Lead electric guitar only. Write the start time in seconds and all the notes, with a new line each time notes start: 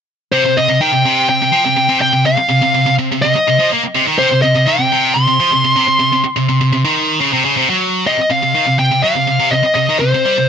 0.32 C5
0.57 D#5
0.81 G5
1.29 G5
2.01 G5
2.26 F5
3.22 D#5
4.18 C5
4.42 D#5
4.66 G5
5.14 C6
8.07 D#5
8.31 F5
8.79 G5
9.03 F5
9.51 D#5
9.74 D#5
9.99 C5